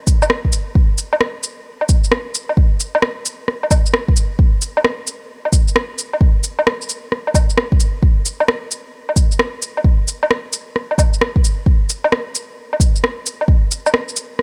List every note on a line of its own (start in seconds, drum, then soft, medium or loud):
0.07 kick loud
0.07 cabasa medium
0.07 shaker medium
0.22 low woodblock medium
0.22 shaker soft
0.30 cross-stick loud
0.45 kick medium
0.53 cabasa medium
0.53 shaker medium
0.75 kick loud
0.98 cabasa medium
0.98 shaker medium
1.13 low woodblock medium
1.21 cross-stick loud
1.43 cabasa medium
1.43 shaker medium
1.81 low woodblock soft
1.89 kick loud
1.89 cabasa medium
1.89 shaker medium
2.04 shaker soft
2.12 cross-stick loud
2.35 cabasa medium
2.35 shaker medium
2.49 low woodblock soft
2.57 kick loud
2.80 cabasa medium
2.80 shaker medium
2.95 low woodblock medium
3.02 cross-stick loud
3.26 cabasa medium
3.26 shaker medium
3.48 cross-stick medium
3.63 low woodblock soft
3.71 kick loud
3.71 cabasa medium
3.71 low woodblock medium
3.71 shaker medium
3.86 shaker soft
3.94 cross-stick loud
4.08 kick loud
4.16 cabasa medium
4.16 shaker medium
4.39 kick loud
4.62 cabasa medium
4.62 shaker medium
4.77 low woodblock medium
4.84 cross-stick loud
5.07 cabasa medium
5.07 shaker medium
5.45 low woodblock soft
5.52 kick loud
5.52 cabasa medium
5.52 shaker medium
5.68 shaker soft
5.76 cross-stick loud
5.98 cabasa medium
5.98 shaker medium
6.13 low woodblock soft
6.21 kick loud
6.44 cabasa medium
6.44 shaker medium
6.59 low woodblock medium
6.67 cross-stick loud
6.82 shaker soft
6.89 cabasa medium
6.89 shaker medium
7.12 cross-stick medium
7.27 low woodblock soft
7.34 kick loud
7.34 cabasa medium
7.34 low woodblock soft
7.34 shaker medium
7.50 shaker soft
7.58 cross-stick loud
7.72 kick loud
7.80 cabasa medium
7.80 shaker medium
8.03 kick loud
8.26 cabasa medium
8.26 shaker medium
8.40 low woodblock medium
8.48 cross-stick loud
8.71 cabasa medium
8.71 shaker medium
9.09 low woodblock soft
9.16 kick loud
9.16 cabasa medium
9.16 shaker medium
9.32 shaker soft
9.39 cross-stick loud
9.62 cabasa medium
9.62 shaker medium
9.77 low woodblock soft
9.84 kick loud
10.08 cabasa medium
10.08 shaker medium
10.23 low woodblock medium
10.31 cross-stick loud
10.53 cabasa medium
10.53 shaker medium
10.76 cross-stick medium
10.91 low woodblock soft
10.98 kick loud
10.98 cabasa medium
10.98 low woodblock medium
10.98 shaker medium
11.14 shaker soft
11.21 cross-stick loud
11.36 kick loud
11.44 cabasa medium
11.44 shaker medium
11.66 kick loud
11.90 cabasa medium
11.90 shaker medium
12.04 low woodblock medium
12.12 cross-stick loud
12.35 cabasa medium
12.35 shaker medium
12.73 low woodblock soft
12.80 kick loud
12.80 cabasa medium
12.80 shaker medium
12.96 shaker soft
13.04 cross-stick loud
13.26 cabasa medium
13.26 shaker medium
13.41 low woodblock soft
13.48 kick loud
13.71 cabasa medium
13.71 shaker medium
13.86 low woodblock medium
13.86 shaker soft
13.94 cross-stick loud
14.09 shaker soft
14.16 cabasa medium
14.16 shaker medium
14.39 cross-stick medium